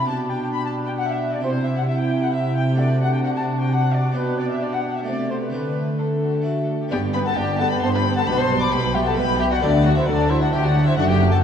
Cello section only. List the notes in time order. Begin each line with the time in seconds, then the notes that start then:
0.09 B2
1.44 C3
4.16 B2
5.07 C3
5.53 D3
6.92 G2
7.37 G2
7.83 G2
8.28 B2
8.73 B2
9.17 B2
9.62 D3
10.08 D3
10.53 D3
10.98 F#2